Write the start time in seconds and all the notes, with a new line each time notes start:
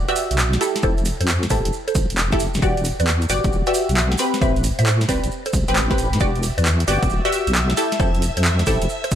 0.08 F#4 G4 B4 D5 E5, closed hi-hat, maracas
0.16 open hi-hat, maracas
0.31 B1, closed hi-hat, maracas
0.38 clap, maracas
0.53 snare, closed hi-hat, maracas
0.61 E4 G4 A4, open hi-hat, maracas
0.76 snare, closed hi-hat, maracas
0.83 F1 E4 G4 A4 C5, kick, maracas
0.98 closed hi-hat, maracas
1.05 open hi-hat, maracas
1.20 F2 A4 C5, closed hi-hat, maracas
1.27 clap, maracas
1.43 snare, closed hi-hat, maracas
1.50 A1 E4 G4 A4 C5, kick, open hi-hat, maracas
1.65 F1, closed hi-hat, maracas
1.73 maracas
1.88 A4 C5, closed hi-hat, maracas
1.95 A1, kick, open hi-hat, maracas
2.10 F1, closed hi-hat, maracas
2.17 clap, maracas
2.32 E4 G4 A4, kick, snare, closed hi-hat, maracas
2.40 open hi-hat, maracas
2.54 F1, snare, closed hi-hat, maracas
2.62 E1 F#4 G4 B4 D5, kick, maracas
2.77 closed hi-hat, maracas
2.85 open hi-hat, maracas
3.00 E2 B4 D5, closed hi-hat, maracas
3.07 clap, maracas
3.22 closed hi-hat, maracas
3.29 G1 F#4 G4 B4 D5, open hi-hat, maracas
3.44 E1, kick, closed hi-hat, maracas
3.52 D1, maracas
3.66 F#4 G4 B4 D5 E5, closed hi-hat, maracas
3.74 open hi-hat, maracas
3.89 B1, closed hi-hat, maracas
3.96 clap, maracas
4.12 snare, closed hi-hat, maracas
4.18 C4 G4 B4, open hi-hat, maracas
4.34 snare, closed hi-hat, maracas
4.41 A1 C4 G4 B4 C5 E5, kick, maracas
4.56 closed hi-hat, maracas
4.64 open hi-hat, maracas
4.79 A2 C5 E5, closed hi-hat, maracas
4.86 clap, maracas
5.01 snare, closed hi-hat, maracas
5.09 C2 C4 G4 B4 D5, kick, open hi-hat, maracas
5.24 A1, closed hi-hat, maracas
5.31 maracas
5.46 A4 C5, closed hi-hat, maracas
5.53 C2, kick, open hi-hat, maracas
5.68 A1 C4 G4 B4, closed hi-hat, maracas
5.76 clap, maracas
5.91 C4 G4 B4, kick, snare, closed hi-hat, maracas
5.98 open hi-hat, maracas
6.13 A2, snare, closed hi-hat, maracas
6.20 E1 F#4 G4 B4 D5 E5 E6, kick, maracas
6.35 closed hi-hat, maracas
6.43 open hi-hat, maracas
6.58 E2 B4 D5, closed hi-hat, maracas
6.65 clap, maracas
6.80 closed hi-hat, maracas
6.87 G1 F#4 G4 B4 D5, open hi-hat, maracas
7.03 E1, kick, closed hi-hat, maracas
7.10 D1, maracas
7.25 F#4 G4 B4 D5 E5, closed hi-hat, maracas
7.33 open hi-hat, maracas
7.47 B1, closed hi-hat, maracas
7.54 clap, maracas
7.70 snare, closed hi-hat, maracas
7.77 E4 G4 A4, open hi-hat, maracas
7.92 snare, closed hi-hat, maracas
8.00 F1 E4 G4 A4 C5, kick, maracas
8.15 closed hi-hat, maracas
8.22 open hi-hat, maracas
8.37 F2 A4 C5, closed hi-hat, maracas
8.44 clap, maracas
8.59 snare, closed hi-hat, maracas
8.67 A1 E4 G4 A4 C5, kick, open hi-hat, maracas
8.82 F1, closed hi-hat, maracas
8.89 maracas
9.04 A4 C5, closed hi-hat, maracas
9.11 A1, kick, open hi-hat, maracas